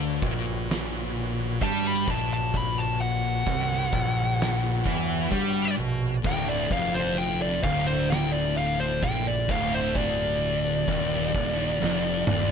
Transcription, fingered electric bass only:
0.00 0.18 D2 loud
0.22 1.57 A#1 loud
1.61 2.04 G2 medium
2.08 3.42 A#1 medium
3.47 3.90 C2 loud
3.93 4.81 A#1 loud
4.86 5.29 E2 medium
5.32 5.75 G2 medium
5.79 6.21 A#1 medium
6.25 6.67 D1 loud
6.70 7.59 F1 loud
7.64 8.98 D1 loud
9.03 9.45 A#1 loud
9.49 10.83 D1 medium
10.88 11.31 D#1 medium
11.35 11.77 D#1 loud
11.82 12.24 F1 loud
12.28 12.51 D#1 medium

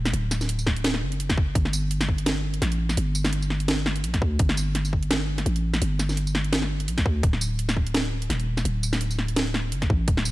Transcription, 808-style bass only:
0.00 0.12 D#1 medium
0.13 1.04 D1 loud
1.02 1.54 F#1 loud
1.55 2.61 G1 loud
2.62 2.96 A1 medium
2.97 4.05 G1 loud
4.04 4.20 A#1 loud
4.22 4.38 D2 medium
4.40 5.45 G1 loud
5.46 5.80 A1 medium
5.82 6.89 G1 loud
6.88 7.04 A#1 loud
7.06 7.22 D2 medium
7.23 8.29 D1 loud
8.30 8.64 D#1 medium
8.65 9.73 D1 loud
9.72 9.88 F#1 loud
9.90 10.06 A1 medium
10.08 10.32 D1 loud

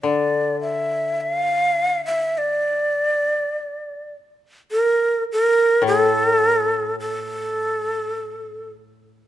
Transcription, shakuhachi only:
0.03 0.60 D5 medium
0.61 1.21 E5 medium
1.21 1.32 E5 medium
1.32 2.05 F5 medium
2.06 2.39 E5 medium
2.38 4.13 D5 medium
4.72 5.24 A#4 medium
5.32 5.83 A#4 medium
5.87 6.96 A4 medium
7.00 8.70 A4 medium

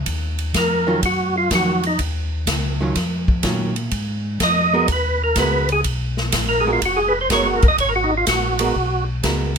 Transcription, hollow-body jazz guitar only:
0.87 1.01 D#3 medium
0.87 1.01 F#3 medium
0.87 1.01 C#4 medium
0.87 1.02 F4 medium
1.50 1.80 D#3 soft
1.50 1.81 F#3 medium
1.50 1.81 C#4 soft
1.50 1.81 F4 soft
2.81 2.95 D#3 medium
2.81 2.95 F#3 medium
2.81 2.95 C#4 medium
2.81 2.95 F4 medium
3.43 3.73 D#3 medium
3.43 3.73 F#3 medium
3.43 3.73 C#4 medium
3.43 3.74 F4 medium
4.73 4.87 G#3 medium
4.73 4.87 B3 medium
4.73 4.88 F#4 medium
4.73 4.88 A#4 medium
5.38 5.67 G#3 medium
5.38 5.67 B3 medium
5.38 5.67 F#4 medium
5.38 5.67 A#4 medium
6.66 6.80 G#3 medium
6.66 6.81 B3 medium
6.66 6.81 F#4 medium
6.66 6.81 A#4 medium
7.31 7.60 G#3 medium
7.31 7.60 B3 medium
7.31 7.60 F#4 medium
7.31 7.60 A#4 medium
8.60 8.73 G#3 medium
8.60 8.74 B3 medium
8.60 8.74 F#4 medium
8.60 8.74 A#4 medium
9.23 9.52 G#3 soft
9.23 9.53 B3 medium
9.23 9.53 F#4 medium
9.23 9.53 A#4 medium

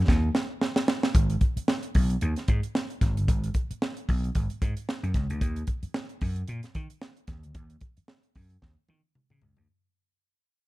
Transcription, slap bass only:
0.08 0.28 D#2 loud
1.15 1.35 G#1 loud
1.57 muted slap bass stroke soft
1.95 2.15 B1 medium
2.22 2.33 D#2 medium
2.49 2.60 G#2 medium
3.02 3.17 G#1 loud
3.17 3.26 G1 medium
3.29 3.49 G#1 loud
3.71 muted slap bass stroke soft
4.09 4.29 B1 medium
4.36 4.46 G#1 loud
4.62 4.73 G#2 medium
5.03 5.12 F#2 medium
5.15 5.26 C#2 loud
5.30 5.42 D2 medium
5.42 5.62 D#2 loud
5.83 muted slap bass stroke medium
6.22 6.42 F#2 loud
6.48 6.60 A#2 medium
6.76 6.87 D#3 loud
7.28 7.44 D#2 medium
7.44 7.53 D2 medium
7.55 7.75 D#2 loud
7.98 muted slap bass stroke soft
8.36 8.56 F#2 medium
8.63 8.74 D#2 loud
8.89 9.00 D#3 loud
9.31 9.40 C#3 medium
9.42 9.54 C#2 medium
9.58 9.66 D2 medium

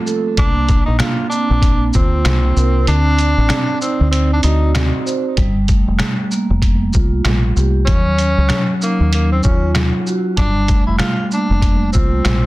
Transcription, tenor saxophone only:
0.39 0.85 D4 loud
0.86 0.98 D#4 medium
0.99 1.28 F4 medium
1.29 1.89 D4 medium
1.95 2.84 C4 medium
2.88 3.77 D4 loud
3.81 4.09 C4 medium
4.11 4.29 C4 medium
4.33 4.43 D4 medium
4.43 4.72 D#4 medium
7.85 8.76 C#4 loud
8.83 9.10 A#3 medium
9.13 9.30 A#3 medium
9.32 9.43 C4 medium
9.43 9.72 C#4 medium
10.37 10.85 D4 loud
10.86 10.97 E4 medium
10.98 11.27 F4 medium
11.33 11.91 D4 medium
11.92 12.46 C4 medium

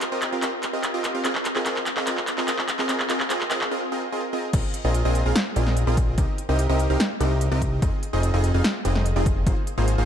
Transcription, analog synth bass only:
4.54 4.61 A#1 loud
4.85 5.03 A#1 loud
5.05 5.24 A#1 loud
5.26 5.33 A#1 loud
5.56 5.85 A#1 loud
5.87 6.16 A#1 loud
6.18 6.26 C2 loud
6.49 6.67 C2 loud
6.69 6.88 C2 loud
6.90 6.98 C2 medium
7.21 7.50 C2 loud
7.52 7.80 C2 medium
7.82 7.90 F1 loud
8.13 8.32 F1 loud
8.34 8.52 F1 loud
8.55 8.62 F1 loud
8.85 9.14 F1 loud
9.16 9.45 F1 loud
9.47 9.55 G#1 loud
9.78 9.96 G#1 loud
9.98 10.05 G#1 loud

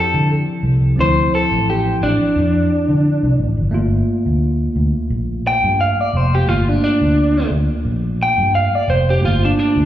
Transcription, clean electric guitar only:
0.00 0.30 A4 medium
1.00 1.32 C5 loud
1.35 1.67 A4 medium
1.70 2.01 G4 medium
2.03 3.35 D4 medium
5.47 5.79 G5 loud
5.81 6.00 F5 medium
6.00 6.17 D5 medium
6.17 6.34 C5 medium
6.35 6.48 G4 medium
6.49 6.69 F4 loud
6.69 6.83 D4 medium
6.84 7.50 D4 loud
8.23 8.54 G5 loud
8.55 8.75 F5 medium
8.75 8.89 D5 medium
8.90 9.08 C5 medium
9.10 9.24 G4 medium
9.25 9.43 F4 medium
9.45 9.58 D4 medium
9.60 9.85 D4 loud

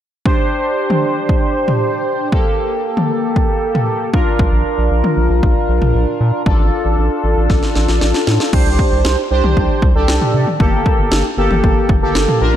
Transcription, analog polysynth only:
0.26 2.29 D4 medium
0.26 2.29 G4 medium
0.26 2.29 C5 medium
2.32 4.10 A#3 medium
2.32 4.10 G4 medium
2.32 4.10 A4 medium
4.13 6.42 D4 medium
4.13 6.42 F4 medium
4.13 6.42 A#4 medium
6.46 8.49 D4 medium
6.46 8.49 F4 medium
6.46 8.49 A4 medium
8.53 9.17 D4 medium
8.53 9.17 G4 medium
8.53 9.17 C5 medium
9.31 9.84 D4 medium
9.31 9.84 G4 medium
9.31 9.84 C5 medium
9.95 10.48 D4 medium
9.95 10.48 G4 medium
9.95 10.48 A4 medium
10.60 11.24 A#3 medium
10.60 11.24 G4 medium
10.60 11.24 A4 medium
11.38 11.91 A#3 medium
11.38 11.91 G4 medium
11.38 11.91 A4 medium
12.02 12.41 A#3 medium
12.02 12.41 G4 medium
12.02 12.41 A4 medium
12.41 12.56 D4 medium
12.41 12.56 F4 medium
12.41 12.56 A#4 loud

